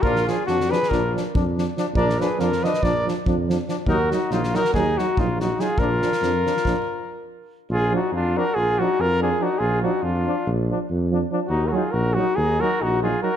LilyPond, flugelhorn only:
\new Staff \with { instrumentName = "Flugelhorn" } { \time 9/8 \tempo 4. = 94 f'8 f'8 d'8 aes'8 f'8 r2 | bes'8 aes'8 f'8 ces''8 bes'8 r2 | ges'8 ees'8 bes8 ges'8 ees'8 ees'8 bes8 ees'8 f'8 | f'2.~ f'8 r4 |
f'8 ees'8 d'8 ges'8 f'8 ees'8 f'8 f'8 ees'8 | f'8 ees'8 d'4~ d'32 r2 r16. | ees'16. ges'32 f'8 ges'8 ees'8 ees'8 ges'8 ees'8 f'8 ges'8 | }